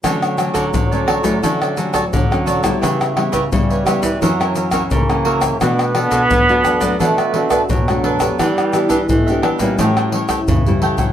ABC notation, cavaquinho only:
X:1
M:4/4
L:1/16
Q:1/4=86
K:D
V:1 name="Cavaquinho"
[FAcd]2 [FAcd] [FAcd] z [Acd] [FAcd] [Acd] [FAcd] [Acd] [FAcd] [FAcd] z2 [FAcd] [Acd] | [GBce]2 [GBce] [GBce] z [Bce] [GBce] [Bce] [F^Ace] [Ace] [FAce] [FAce] z2 [FAce] [Ace] | [DABd]2 [DABd] [DABd] z [ABd] [DABd] [ABd] [DABd] [ABd] [DABd] [DABd] z2 [DABd] [ABd] | [DGBe]2 [DGBe] [DGBe] z [GBe] [DGBe] [GBe] [GAcg] [Acg] [GAcg] [GAcg] z2 [GAcg] [Acg] |]